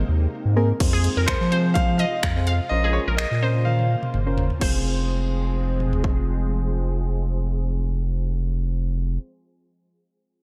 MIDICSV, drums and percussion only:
0, 0, Header, 1, 2, 480
1, 0, Start_track
1, 0, Key_signature, -4, "minor"
1, 0, Tempo, 476190
1, 809, Time_signature, 4, 2, 24, 8
1, 10511, End_track
2, 0, Start_track
2, 0, Title_t, "Drums"
2, 809, Note_on_c, 9, 42, 59
2, 809, Note_on_c, 9, 49, 83
2, 810, Note_on_c, 9, 36, 119
2, 910, Note_off_c, 9, 42, 0
2, 910, Note_off_c, 9, 49, 0
2, 911, Note_off_c, 9, 36, 0
2, 1049, Note_on_c, 9, 42, 61
2, 1150, Note_off_c, 9, 42, 0
2, 1287, Note_on_c, 9, 42, 57
2, 1288, Note_on_c, 9, 26, 106
2, 1288, Note_on_c, 9, 36, 106
2, 1388, Note_off_c, 9, 26, 0
2, 1388, Note_off_c, 9, 42, 0
2, 1389, Note_off_c, 9, 36, 0
2, 1532, Note_on_c, 9, 42, 48
2, 1633, Note_off_c, 9, 42, 0
2, 1768, Note_on_c, 9, 42, 75
2, 1769, Note_on_c, 9, 36, 121
2, 1869, Note_off_c, 9, 42, 0
2, 1870, Note_off_c, 9, 36, 0
2, 2007, Note_on_c, 9, 42, 48
2, 2108, Note_off_c, 9, 42, 0
2, 2247, Note_on_c, 9, 42, 60
2, 2249, Note_on_c, 9, 26, 110
2, 2251, Note_on_c, 9, 36, 97
2, 2348, Note_off_c, 9, 42, 0
2, 2350, Note_off_c, 9, 26, 0
2, 2352, Note_off_c, 9, 36, 0
2, 2488, Note_on_c, 9, 42, 55
2, 2589, Note_off_c, 9, 42, 0
2, 3210, Note_on_c, 9, 26, 102
2, 3311, Note_off_c, 9, 26, 0
2, 3691, Note_on_c, 9, 48, 53
2, 3792, Note_off_c, 9, 48, 0
2, 3820, Note_on_c, 9, 48, 52
2, 3921, Note_off_c, 9, 48, 0
2, 4060, Note_on_c, 9, 47, 59
2, 4161, Note_off_c, 9, 47, 0
2, 4172, Note_on_c, 9, 45, 79
2, 4273, Note_off_c, 9, 45, 0
2, 4411, Note_on_c, 9, 43, 92
2, 4512, Note_off_c, 9, 43, 0
2, 4538, Note_on_c, 9, 43, 77
2, 4639, Note_off_c, 9, 43, 0
2, 4650, Note_on_c, 9, 49, 79
2, 4651, Note_on_c, 9, 36, 96
2, 4751, Note_off_c, 9, 49, 0
2, 4752, Note_off_c, 9, 36, 0
2, 5848, Note_on_c, 9, 47, 56
2, 5949, Note_off_c, 9, 47, 0
2, 5977, Note_on_c, 9, 43, 68
2, 6078, Note_off_c, 9, 43, 0
2, 6090, Note_on_c, 9, 36, 87
2, 6190, Note_off_c, 9, 36, 0
2, 10511, End_track
0, 0, End_of_file